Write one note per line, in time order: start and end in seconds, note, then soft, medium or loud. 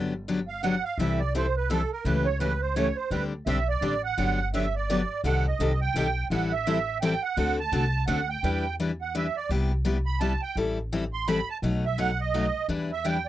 0.00 0.77 G1 medium
0.00 0.12 D3 medium
0.00 0.12 F#3 medium
0.00 0.13 B3 medium
0.00 0.13 D4 medium
0.00 0.13 G4 medium
0.28 0.39 D3 medium
0.28 0.39 F#3 medium
0.28 0.39 B3 medium
0.28 0.39 D4 medium
0.28 0.39 G4 medium
0.48 0.62 F5 medium
0.63 0.74 D3 medium
0.63 0.74 F#3 medium
0.63 0.74 B3 medium
0.63 0.74 D4 medium
0.63 0.74 G4 medium
0.63 0.84 F#5 loud
0.84 0.98 F5 medium
0.98 1.83 C2 medium
0.98 1.19 C3 medium
0.98 1.19 E3 medium
0.98 1.20 G3 medium
0.98 1.20 C4 medium
0.98 1.20 E4 medium
0.98 1.20 A4 medium
0.98 1.19 E5 medium
1.19 1.33 D5 medium
1.35 1.45 C3 medium
1.35 1.45 E3 medium
1.35 1.45 G3 medium
1.35 1.45 C4 medium
1.35 1.46 E4 medium
1.35 1.46 A4 medium
1.35 1.55 C5 medium
1.57 1.70 B4 medium
1.70 1.80 C3 medium
1.70 1.81 E3 medium
1.70 1.81 G3 medium
1.70 1.81 C4 medium
1.70 1.81 E4 medium
1.70 1.90 A4 medium
1.70 1.81 A4 loud
1.93 2.05 A#4 medium
2.05 2.90 C#2 medium
2.05 2.26 C#3 medium
2.05 2.26 E3 medium
2.05 2.26 A3 medium
2.05 2.26 C#4 medium
2.05 2.26 G4 medium
2.05 2.26 B4 medium
2.25 2.39 C#5 medium
2.40 2.51 C#3 medium
2.40 2.51 E3 medium
2.40 2.52 A3 medium
2.40 2.52 C#4 loud
2.40 2.52 G4 medium
2.40 2.61 B4 medium
2.61 2.75 C5 medium
2.75 2.87 C#3 medium
2.75 2.87 E3 medium
2.75 2.87 A3 medium
2.75 2.87 C#4 medium
2.75 2.87 G4 medium
2.75 2.96 C#5 medium
2.96 3.10 C5 medium
3.11 3.39 D2 medium
3.11 3.32 D3 medium
3.11 3.32 G3 medium
3.11 3.32 C4 medium
3.11 3.32 D4 medium
3.11 3.32 G4 medium
3.11 3.24 B4 medium
3.46 3.77 B1 medium
3.46 3.58 D3 medium
3.46 3.58 G3 medium
3.46 3.58 C4 medium
3.46 3.58 D4 medium
3.46 3.58 G4 medium
3.46 3.68 E5 medium
3.69 4.02 D5 medium
3.81 4.12 A1 medium
3.81 3.93 D3 medium
3.81 3.93 G3 medium
3.81 3.93 C4 medium
3.81 3.93 D4 medium
3.81 3.93 G4 medium
4.04 4.50 F#5 loud
4.18 5.03 G1 medium
4.18 4.38 D3 medium
4.18 4.39 F#3 medium
4.18 4.38 B3 medium
4.18 4.39 D4 medium
4.18 4.39 G4 medium
4.54 4.64 D3 medium
4.54 4.65 F#3 medium
4.54 4.65 B3 medium
4.54 4.65 D4 medium
4.54 4.65 G4 medium
4.54 4.75 E5 medium
4.76 5.21 D5 medium
4.90 5.00 D3 medium
4.90 5.00 F#3 medium
4.90 5.00 B3 medium
4.90 5.00 D4 medium
4.90 5.01 G4 medium
5.24 5.52 C2 medium
5.24 5.45 C3 medium
5.24 5.45 D#3 medium
5.24 5.45 G3 medium
5.24 5.45 C4 medium
5.24 5.45 G4 medium
5.24 5.46 A4 medium
5.24 5.46 F#5 medium
5.48 5.80 D#5 medium
5.59 5.90 C2 medium
5.59 5.71 C3 medium
5.59 5.71 D#3 medium
5.59 5.71 G3 medium
5.59 5.71 C4 medium
5.59 5.71 G4 medium
5.59 5.71 A4 medium
5.82 6.27 G5 loud
5.94 6.25 B1 medium
5.94 6.06 C3 medium
5.94 6.06 D#3 medium
5.94 6.07 G3 medium
5.94 6.07 C4 loud
5.94 6.07 G4 loud
5.94 6.07 A4 loud
6.30 7.16 A1 medium
6.30 6.52 E3 medium
6.30 6.52 G3 medium
6.30 6.52 C4 medium
6.30 6.52 E4 medium
6.30 6.52 A4 medium
6.30 6.52 F#5 medium
6.52 6.98 E5 loud
6.67 6.77 E3 medium
6.67 6.78 G3 medium
6.67 6.78 C4 medium
6.67 6.78 E4 medium
6.67 6.78 A4 loud
7.01 7.13 E3 medium
7.01 7.13 G3 medium
7.01 7.13 C4 loud
7.01 7.13 E4 medium
7.01 7.13 A4 loud
7.01 7.23 G5 loud
7.22 7.56 F#5 medium
7.37 7.65 D2 medium
7.37 7.58 D3 medium
7.37 7.58 A3 medium
7.37 7.58 C4 medium
7.37 7.58 F#4 medium
7.37 7.58 A4 medium
7.60 8.05 A5 loud
7.72 8.02 C2 medium
7.72 7.83 D3 medium
7.72 7.84 A3 medium
7.72 7.84 C4 loud
7.72 7.84 F#4 loud
7.72 7.84 A4 medium
8.07 8.38 D2 medium
8.07 8.19 D3 loud
8.07 8.19 A3 loud
8.07 8.19 C4 loud
8.07 8.19 F#4 loud
8.07 8.19 A4 loud
8.07 8.29 F#5 medium
8.29 8.75 G5 medium
8.43 9.29 E2 medium
8.43 8.64 E3 medium
8.43 8.64 G3 medium
8.43 8.65 D4 medium
8.43 8.65 E4 medium
8.43 8.65 B4 medium
8.80 8.90 E3 medium
8.80 8.90 G3 medium
8.80 8.91 D4 medium
8.80 8.91 E4 medium
8.80 8.91 B4 medium
9.02 9.15 F#5 medium
9.15 9.26 E3 medium
9.15 9.26 G3 medium
9.15 9.26 D4 medium
9.15 9.26 E4 medium
9.15 9.26 B4 medium
9.15 9.36 E5 medium
9.36 9.50 D5 medium
9.49 10.35 C2 medium
9.49 9.71 C3 medium
9.49 9.71 G3 medium
9.49 9.71 B3 medium
9.49 9.71 E4 medium
9.49 9.71 G4 medium
9.85 9.96 C3 medium
9.85 9.96 G3 medium
9.85 9.97 B3 medium
9.85 9.97 E4 medium
9.85 9.97 G4 medium
10.06 10.20 B5 loud
10.20 10.32 C3 medium
10.20 10.32 G3 medium
10.20 10.32 B3 medium
10.20 10.32 E4 medium
10.20 10.32 G4 medium
10.20 10.42 A5 medium
10.42 10.56 G5 medium
10.56 11.41 A1 medium
10.56 10.78 E3 medium
10.56 10.78 G3 medium
10.56 10.78 C4 medium
10.56 10.78 E4 medium
10.56 10.78 A4 medium
10.92 11.03 E3 medium
10.92 11.03 G3 medium
10.92 11.03 C4 medium
10.92 11.04 E4 loud
10.92 11.04 A4 medium
11.13 11.27 C6 medium
11.28 11.39 E3 medium
11.28 11.39 G3 medium
11.28 11.39 C4 loud
11.28 11.39 E4 medium
11.28 11.39 A4 medium
11.28 11.49 B5 medium
11.50 11.58 A5 loud
11.62 12.48 B1 loud
11.62 11.84 B2 medium
11.62 11.84 F#3 medium
11.62 11.84 A3 medium
11.62 11.84 D#4 medium
11.62 11.84 F#4 medium
11.86 11.99 E5 medium
11.98 12.09 B2 medium
11.98 12.09 F#3 medium
11.98 12.10 A3 medium
11.98 12.10 D#4 medium
11.98 12.10 F#4 medium
11.98 12.20 F#5 loud
12.21 12.67 D#5 loud
12.34 12.45 B2 medium
12.34 12.45 F#3 medium
12.34 12.45 A3 medium
12.34 12.45 D#4 medium
12.34 12.45 F#4 medium
12.68 13.29 E2 medium
12.68 12.90 E3 medium
12.68 12.90 G3 medium
12.68 12.90 D4 medium
12.68 12.90 E4 medium
12.68 12.90 B4 medium
12.92 13.05 E5 medium
13.05 13.16 E3 medium
13.05 13.16 G3 medium
13.05 13.16 D4 medium
13.05 13.16 E4 medium
13.05 13.17 B4 medium
13.05 13.27 G5 medium